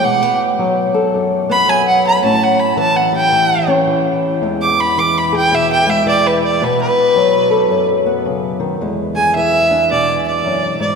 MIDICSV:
0, 0, Header, 1, 3, 480
1, 0, Start_track
1, 0, Tempo, 548446
1, 31, Time_signature, 4, 2, 24, 8
1, 9586, End_track
2, 0, Start_track
2, 0, Title_t, "Fiddle"
2, 0, Program_c, 0, 110
2, 38, Note_on_c, 0, 78, 93
2, 328, Note_off_c, 0, 78, 0
2, 1326, Note_on_c, 0, 83, 107
2, 1483, Note_on_c, 0, 80, 95
2, 1497, Note_off_c, 0, 83, 0
2, 1632, Note_off_c, 0, 80, 0
2, 1644, Note_on_c, 0, 78, 91
2, 1792, Note_off_c, 0, 78, 0
2, 1812, Note_on_c, 0, 83, 86
2, 1956, Note_off_c, 0, 83, 0
2, 1963, Note_on_c, 0, 81, 87
2, 2129, Note_on_c, 0, 78, 85
2, 2142, Note_off_c, 0, 81, 0
2, 2272, Note_on_c, 0, 83, 77
2, 2285, Note_off_c, 0, 78, 0
2, 2426, Note_off_c, 0, 83, 0
2, 2442, Note_on_c, 0, 81, 99
2, 2593, Note_on_c, 0, 78, 84
2, 2606, Note_off_c, 0, 81, 0
2, 2746, Note_off_c, 0, 78, 0
2, 2770, Note_on_c, 0, 79, 105
2, 3225, Note_off_c, 0, 79, 0
2, 4040, Note_on_c, 0, 86, 93
2, 4205, Note_on_c, 0, 83, 95
2, 4218, Note_off_c, 0, 86, 0
2, 4367, Note_on_c, 0, 86, 92
2, 4380, Note_off_c, 0, 83, 0
2, 4534, Note_on_c, 0, 83, 81
2, 4547, Note_off_c, 0, 86, 0
2, 4676, Note_off_c, 0, 83, 0
2, 4696, Note_on_c, 0, 79, 101
2, 4852, Note_on_c, 0, 76, 112
2, 4866, Note_off_c, 0, 79, 0
2, 4995, Note_off_c, 0, 76, 0
2, 5011, Note_on_c, 0, 79, 95
2, 5163, Note_on_c, 0, 76, 103
2, 5176, Note_off_c, 0, 79, 0
2, 5310, Note_off_c, 0, 76, 0
2, 5324, Note_on_c, 0, 74, 106
2, 5485, Note_on_c, 0, 71, 94
2, 5498, Note_off_c, 0, 74, 0
2, 5631, Note_off_c, 0, 71, 0
2, 5640, Note_on_c, 0, 74, 87
2, 5809, Note_on_c, 0, 71, 93
2, 5822, Note_off_c, 0, 74, 0
2, 5953, Note_off_c, 0, 71, 0
2, 5964, Note_on_c, 0, 71, 109
2, 6886, Note_off_c, 0, 71, 0
2, 8012, Note_on_c, 0, 80, 91
2, 8176, Note_off_c, 0, 80, 0
2, 8189, Note_on_c, 0, 76, 106
2, 8635, Note_off_c, 0, 76, 0
2, 8674, Note_on_c, 0, 74, 99
2, 8954, Note_off_c, 0, 74, 0
2, 8993, Note_on_c, 0, 74, 85
2, 9430, Note_off_c, 0, 74, 0
2, 9461, Note_on_c, 0, 74, 74
2, 9586, Note_off_c, 0, 74, 0
2, 9586, End_track
3, 0, Start_track
3, 0, Title_t, "Steel-string acoustic guitar"
3, 0, Program_c, 1, 25
3, 31, Note_on_c, 1, 47, 66
3, 36, Note_on_c, 1, 56, 59
3, 197, Note_off_c, 1, 56, 0
3, 197, Note_on_c, 1, 59, 47
3, 517, Note_on_c, 1, 54, 64
3, 826, Note_on_c, 1, 69, 76
3, 991, Note_off_c, 1, 47, 0
3, 999, Note_on_c, 1, 42, 66
3, 1298, Note_off_c, 1, 59, 0
3, 1309, Note_on_c, 1, 59, 66
3, 1461, Note_off_c, 1, 54, 0
3, 1471, Note_on_c, 1, 54, 54
3, 1929, Note_off_c, 1, 54, 0
3, 1933, Note_off_c, 1, 42, 0
3, 1935, Note_off_c, 1, 69, 0
3, 1936, Note_off_c, 1, 59, 0
3, 1949, Note_on_c, 1, 45, 69
3, 1956, Note_on_c, 1, 61, 59
3, 2423, Note_on_c, 1, 52, 64
3, 2735, Note_on_c, 1, 67, 70
3, 2898, Note_off_c, 1, 52, 0
3, 2909, Note_on_c, 1, 52, 71
3, 3209, Note_off_c, 1, 61, 0
3, 3219, Note_on_c, 1, 61, 71
3, 3378, Note_off_c, 1, 52, 0
3, 3388, Note_on_c, 1, 52, 60
3, 3847, Note_off_c, 1, 45, 0
3, 3848, Note_off_c, 1, 67, 0
3, 3850, Note_off_c, 1, 61, 0
3, 3865, Note_on_c, 1, 40, 66
3, 3875, Note_on_c, 1, 56, 51
3, 4345, Note_off_c, 1, 52, 0
3, 4355, Note_on_c, 1, 52, 63
3, 4662, Note_on_c, 1, 68, 71
3, 4826, Note_on_c, 1, 47, 66
3, 5123, Note_off_c, 1, 56, 0
3, 5133, Note_on_c, 1, 56, 64
3, 5293, Note_off_c, 1, 52, 0
3, 5303, Note_on_c, 1, 52, 63
3, 5306, Note_off_c, 1, 47, 0
3, 5770, Note_off_c, 1, 68, 0
3, 5784, Note_off_c, 1, 40, 0
3, 5784, Note_off_c, 1, 52, 0
3, 5788, Note_off_c, 1, 56, 0
3, 5789, Note_on_c, 1, 47, 70
3, 5794, Note_on_c, 1, 59, 61
3, 6265, Note_on_c, 1, 54, 66
3, 6568, Note_on_c, 1, 69, 70
3, 6739, Note_on_c, 1, 42, 73
3, 6747, Note_off_c, 1, 47, 0
3, 7044, Note_off_c, 1, 59, 0
3, 7055, Note_on_c, 1, 59, 59
3, 7225, Note_on_c, 1, 49, 62
3, 7521, Note_off_c, 1, 49, 0
3, 7525, Note_on_c, 1, 51, 64
3, 7682, Note_off_c, 1, 42, 0
3, 7684, Note_off_c, 1, 69, 0
3, 7685, Note_off_c, 1, 54, 0
3, 7688, Note_off_c, 1, 59, 0
3, 7704, Note_off_c, 1, 51, 0
3, 7710, Note_on_c, 1, 40, 62
3, 7715, Note_on_c, 1, 56, 56
3, 8024, Note_on_c, 1, 68, 72
3, 8195, Note_on_c, 1, 52, 65
3, 8497, Note_on_c, 1, 62, 59
3, 8673, Note_on_c, 1, 47, 67
3, 9144, Note_off_c, 1, 40, 0
3, 9148, Note_on_c, 1, 42, 59
3, 9444, Note_off_c, 1, 42, 0
3, 9448, Note_on_c, 1, 44, 66
3, 9586, Note_off_c, 1, 44, 0
3, 9586, Note_off_c, 1, 47, 0
3, 9586, Note_off_c, 1, 52, 0
3, 9586, Note_off_c, 1, 56, 0
3, 9586, Note_off_c, 1, 62, 0
3, 9586, Note_off_c, 1, 68, 0
3, 9586, End_track
0, 0, End_of_file